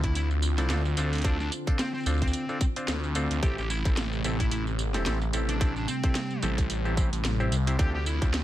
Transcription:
Already playing: D2 D3 C4 F4
0.04 E4, kick, closed hi-hat
0.15 D2 E4, closed hi-hat, tambourine
0.31 tambourine
0.42 tambourine
0.53 C#2
0.58 C4 D4 E4 F4 A4, snare, closed hi-hat, tambourine
0.70 D2 C4 D4 F4 A4, snare, closed hi-hat, tambourine
0.85 snare, tambourine
0.97 D2 C4 D4 F4 A4, closed hi-hat, tambourine
1.13 closed hi-hat, tambourine
1.15 closed hi-hat
1.18 closed hi-hat
1.22 D4 F4, kick, closed hi-hat
1.25 C4 D4 A4, closed hi-hat, tambourine
1.40 D4, tambourine
1.52 closed hi-hat, tambourine
1.67 C4 D4 F4 A4, kick, closed hi-hat, tambourine
1.79 C4, snare, closed hi-hat, tambourine
1.94 C4, tambourine
1.98 tambourine
2.01 tambourine
2.03 D2, closed hi-hat, tambourine
2.06 C4 D4 F4 A4, tambourine
2.10 tambourine
2.14 tambourine
2.17 tambourine
2.22 C4, kick, closed hi-hat
2.27 tambourine
2.33 closed hi-hat, tambourine
2.49 C4 D4 F4 A4, tambourine
2.61 kick, snare, closed hi-hat, tambourine
2.76 C4 D4 F4 C5, closed hi-hat, tambourine
2.88 D2, snare, closed hi-hat, tambourine
3.04 tambourine
3.15 C4 D4 F4 A4, closed hi-hat, tambourine
3.31 D2, closed hi-hat, tambourine
3.43 A1 C3 A3 C4 E4 G4 A4, kick, closed hi-hat, tambourine
3.58 A1 G4, tambourine
3.70 E4, tambourine
3.85 A1 C4 E4 G4 A4, kick, closed hi-hat, tambourine
3.97 snare, closed hi-hat, tambourine
4.13 tambourine
4.24 A1 C4 E4 G4 A4, snare, closed hi-hat, tambourine
4.40 E4, kick, closed hi-hat, tambourine
4.51 A1 E4, closed hi-hat, tambourine
4.67 tambourine
4.79 tambourine
4.94 C4 E4 G4 A4, snare, closed hi-hat, tambourine
5.06 A1 C4 E4 G4 A4, snare, closed hi-hat, tambourine
5.22 snare, tambourine
5.33 A1 C4 E4 G4 A4, closed hi-hat, tambourine
5.49 D4, closed hi-hat, tambourine
5.61 G3 C4 D4 E4 G4 A4, kick, closed hi-hat, tambourine
5.76 D4, tambourine
5.88 C4, tambourine
6.04 C4 E4 G4 A4, kick, closed hi-hat, tambourine
6.15 snare, closed hi-hat, tambourine
6.31 tambourine
6.43 A1 C4 E4 G4 A4, closed hi-hat, tambourine
6.58 kick, closed hi-hat, tambourine
6.70 A1, closed hi-hat, tambourine
6.85 C4 E4 G4 A4, tambourine
6.97 C4 E4 G4 C5, kick, snare, tambourine
7.13 A1, closed hi-hat, tambourine
7.24 A1, snare, closed hi-hat, tambourine
7.40 C4 E4 G4 C5, tambourine
7.52 C2, closed hi-hat, tambourine
7.67 C4 E4 G4 C5, closed hi-hat, tambourine
7.79 D2 D3 C4 D4 F4 G4 A4, kick, closed hi-hat, tambourine
7.95 D2 G4
8.06 E4, tambourine
8.22 D2 C4 D4 F4 G4, kick, closed hi-hat, tambourine
8.34 snare, closed hi-hat, tambourine

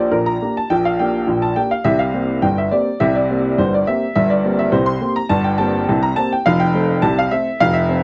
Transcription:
Already playing: A#1 A#2 A#3 D4 G4 C5
0.00 D5
0.11 A#1 A#2 A#4
0.26 A#5
0.42 A#3 D4 G4
0.57 A5
0.70 A#1 A#2 G5
0.85 F5
0.99 A#3 D4 G4 G5
1.27 A#1 A#2
1.42 A5
1.56 A#3 D4 G4 G5
1.71 F5
1.84 C2 C3 E5
1.99 F5
2.14 A#3 C4 G4
2.42 G1 G2 G5
2.58 E5
2.71 A#3 C4 G4 D5
3.00 C2 C3 E5
3.15 D5
3.30 A#3 C4 G4
3.58 G1 G2 C5
3.74 D5
3.87 A#3 C4 G4 E5
4.16 G1 G2 E5
4.30 D5
4.44 A#3 C4 G4
4.59 E5
4.72 C2 C3 C5
4.86 C6
5.01 A#3 C4 G4
5.16 A#5
5.29 G1 G2 A5
5.44 G5
5.58 A#3 C4 G4 A5
5.89 C2 C3
6.03 A#5
6.16 A#3 C4 G4 A5
6.33 G5
6.46 F1 F2 F5
6.60 G5
6.74 A3 C4 A4
7.02 C2 C3 A5
7.19 F5
7.31 A3 C4 A4 E5
7.60 F1 F2 F5
7.74 E5
7.89 A3 C4 A4

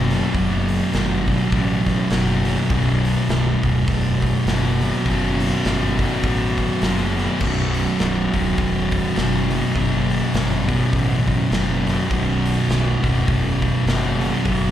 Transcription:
Already playing: F#1 B1 F#2 B2
0.10 B1 F#2 B2, snare, open hi-hat
0.34 F#1 B1 F#2 B2, kick, open hi-hat
0.69 open hi-hat
0.93 G1, snare, open hi-hat
1.26 B1 F#2 B2, kick, open hi-hat
1.52 A1, kick, open hi-hat
1.86 kick, snare, open hi-hat
2.10 F#1 B1 F#2 B2, snare, open hi-hat
2.45 B1 F#2 B2, open hi-hat
2.69 B0 B1 F#2 B2, kick, open hi-hat
2.74 B2
3.05 open hi-hat
3.29 B0, snare, open hi-hat
3.63 D1 B1 F#2 B2, kick, open hi-hat
3.88 E1, kick, open hi-hat
4.22 kick, open hi-hat
4.46 F#1 B1 F#2 B2, snare, open hi-hat
4.81 B1 F#2 B2, open hi-hat
5.04 F#1 B1 F#2 B2, kick, open hi-hat
5.40 open hi-hat
5.65 G1, snare, open hi-hat
5.99 B1 F#2 B2, kick, open hi-hat
6.23 A1, kick, open hi-hat
6.58 kick, open hi-hat
6.82 F#1 B1 F#2 B2, snare, open hi-hat
7.16 B1 F#2 B2, snare, open hi-hat
7.40 B0 B1 F#2 B2, kick, crash
7.74 open hi-hat
7.99 B0, snare, open hi-hat
8.33 D1 B1 F#2 B2, kick, open hi-hat
8.58 E1, kick, open hi-hat
8.92 kick, open hi-hat
9.16 F#1 B1 F#2 B2, snare, open hi-hat
9.51 B1 F#2 B2, open hi-hat
9.74 F#1 B1 F#2 B2, kick, open hi-hat
10.10 open hi-hat
10.34 G1, snare, open hi-hat
10.68 B1 F#2 B2, kick, open hi-hat
10.93 A1, kick, open hi-hat
11.28 kick, open hi-hat
11.50 F#1 B1 F#2 B2, snare, open hi-hat
11.85 B1 F#2 B2, snare, open hi-hat
12.09 B0 B1 F#2 B2, kick, open hi-hat
12.46 open hi-hat
12.69 B0, snare, open hi-hat
13.03 D1 B1 F#2 B2, kick, open hi-hat
13.28 E1, kick, open hi-hat
13.62 kick, open hi-hat
13.86 F#1 B1 F#2 B2, snare, open hi-hat
14.21 B1 F#2 B2, open hi-hat
14.45 F#1 B1 F#2 B2, kick, open hi-hat

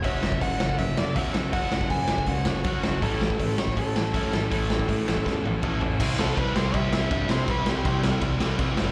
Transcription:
0.04 F#1 F#2 C#3 F#3 C#4 F#4 A4 E5, kick, open hi-hat
0.22 F#1 F#2 C#3 F#3 C#4, snare
0.32 kick
0.41 F#1 F#2 C#3 F#3 C#4 F#5, kick, open hi-hat
0.59 F#2 C#3 F#3 C#4, snare
0.69 kick
0.79 F#1 F#2 C#3 F#3 C#4 E5, kick, open hi-hat
0.97 F#1 F#2 C#3 F#3 C#4 D5, snare
1.16 E2 F#2 C#3 F#3 C#4 F#4 E5, kick, open hi-hat
1.33 F#2 C#3 F#3 C#4 F#4 A4, snare
1.53 F#1 F#2 C#3 F#3 C#4 F#4 A4 F#5, kick, open hi-hat
1.72 F#1 F#2 C#3 F#3 C#4, snare
1.81 kick
1.90 F#2 C#3 F#3 C#4 G#5, kick, open hi-hat
2.08 F#1 F#2 C#3 F#3 C#4, snare
2.18 kick
2.26 C#2 F#2 C#3 F#3 C#4 F#5, kick, open hi-hat
2.45 F#1 F#2 C#3 F#3 C#4 F#4, snare
2.64 F#1 F#2 C#3 F#3 C#4 F#4, kick, open hi-hat
2.83 F#1 F#2 C#3 F#3 C#4 F#4 A4, snare
3.02 A1 A2 E3 A3 C#4 E4 A4, kick, open hi-hat
3.21 A1 A2 E3 A3 C#4, snare
3.30 kick
3.39 A1 A2 E3 A3 C#4, kick, open hi-hat
3.58 A2 E3 A3 C#4 C#5, snare
3.68 kick
3.76 A1 A2 E3 A3 C#4 A4, kick, open hi-hat
3.95 A1 A2 E3 A3 C#4, snare
4.13 F#2 A2 E3 A3 C#4 E4, kick, open hi-hat
4.31 A2 E3 A3 C#4 E4 A4, snare
4.51 A1 A2 E3 A3 C#4 E4 A4, kick, open hi-hat
4.69 A1 A2 E3 A3 C#4, snare
4.80 kick
4.88 A2 E3 A3 C#4, kick, open hi-hat
5.06 A1 A2 E3 A3 C#4, snare
5.17 kick
5.25 E2 A2 E3 A3 C#4, kick, snare
5.44 A1 A2 E3 A3 C#4, high tom
5.62 A1 A2 E3 A3 C#4 E4, kick, mid tom
5.81 A1 A2 E3 A3 C#4 E4 A4, floor tom
5.99 C2 C3 E3 G3 C4 E4, kick, crash
6.18 C2 C3 E3 G3 C4 E4 A4, snare
6.36 C2 C3 E3 G3 C4 E4 B4, kick, crash
6.54 C2 C3 E3 G3 C4 E4 C5, snare
6.73 C2 C3 E3 G3 C4 E4 E5, kick, crash
6.91 C2 C3 E3 G3 C4 E4, snare
7.10 G2 C3 E3 G3 C4 E4, kick, crash
7.29 C3 E3 G3 C4 E4 C5, snare
7.47 C2 C3 E3 G3 C4 E4 B4, kick, crash
7.66 C2 C3 E3 G3 C4 E4 G4, snare
7.84 C2 C3 E3 G3 C4 E4, kick, crash
8.03 C2 C3 E3 G3 C4 E4, snare
8.21 C2 C3 E3 G3 C4 E4, kick, crash
8.40 C2 C3 E3 G3 C4 E4, snare
8.59 C2 C3 E3 G3 C4 E4, kick, crash
8.76 G1 C3 E3 G3 C4, snare
8.80 E4

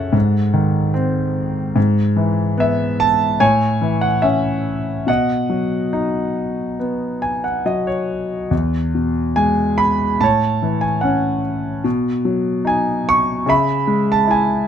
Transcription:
Already playing: F#2 C#3 C#4 A4 C#5 E5 F#5
0.13 G#2
0.54 D#3
0.94 C4
1.76 G#2
2.16 E3
2.58 B3 E5
3.00 A5
3.40 A2 C#5 G#5
3.81 E3
4.01 F#5
4.22 C#4 E5
5.06 B2 D#5 F#5
5.50 F#3
5.93 D#4
6.80 B3
7.22 G#5
7.44 F#5
7.66 F#3 D#5
7.87 C#5
8.51 E2
8.95 B2
9.36 G#3 G#5
9.78 B5
10.21 A2 C#5 A5
10.62 E3
10.81 G#5
11.01 C#4 F#5
11.84 B2
12.25 F#3
12.65 D#4 G#5
13.09 C#6
13.46 C#3 E5 B5
13.87 G#3
14.12 A5
14.27 E4 G#5

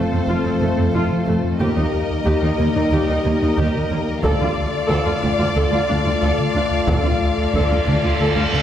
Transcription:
Already playing: A3 C4 F4 A4 C5 F5
0.12 F2 C4
0.28 F1 F2 F4
0.45 F2 C4
0.61 F1 F2 F3 A3
0.77 F2 C4
0.93 F1 F2 F4
1.11 F3
1.27 F1 F2 A3
1.44 F2
1.60 D#2 G3 A#3 D#4 G4 A#4 D#5
1.76 D#2 D#4
1.93 D#2
2.10 D#2
2.26 D#2 G4
2.42 D#2 D#4
2.59 D#2 D#3 A#3
2.75 D#2 D#4
2.92 D#2 G4
3.09 D#2 D#4
3.25 D#2 D#3 A#3
3.42 D#2 D#4
3.57 D#2 G4
3.75 D#3
3.91 D#2 A#3
4.08 D#2
4.23 D2 A3 F4 A4 D5 F5, taiko
4.41 D2 F4
4.57 D2
4.74 D2
4.89 D2 A4
5.06 D2 F4
5.22 D2 D3 D4, taiko
5.39 D2 F4
5.56 D2 A4
5.72 D2 F4
5.89 D2 D3 D4
6.05 D2 F4
6.22 D2 A4
6.38 D3
6.55 D2 D4
6.71 D2
6.87 D2 A4, taiko, reverse cymbal
7.04 D2 F4
7.21 D2
7.38 D2
7.54 D2 A4, taiko
7.70 D2 F4
7.87 D2 D3 D4
8.03 D2 F4
8.19 D2 A4
8.35 D2 F4
8.52 D2 D3 D4

